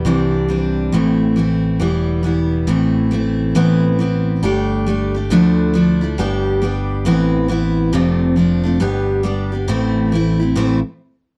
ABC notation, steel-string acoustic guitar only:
X:1
M:2/4
L:1/8
Q:"Swing" 1/4=137
K:Am
V:1 name="Steel-string acoustic guitar"
[C,E,G,CD]2 [E,G,CD]2 | [A,,E,A,CE]2 [E,A,CE]2 | [E,G,B,E]2 [E,G,B,E]2 | [A,,E,A,CE]2 [E,A,CE]2 |
[A,,E,B,CE]2 [E,B,CE]2 | [G,A,DG]2 [G,A,DG] [A,DG] | [D,,D,F,A,DE]2 [F,A,DE] [F,A,DE] | [G,B,DG]2 [G,B,DG]2 |
[A,,E,B,CE]2 [E,B,CE]2 | [F,,C,F,A,CD]2 [F,A,CD] [F,A,CD] | [G,B,DG]2 [G,B,DG] [B,DG] | [A,,E,A,CE]2 [E,A,CE] [A,CE] |
[A,,E,A,CE] z3 |]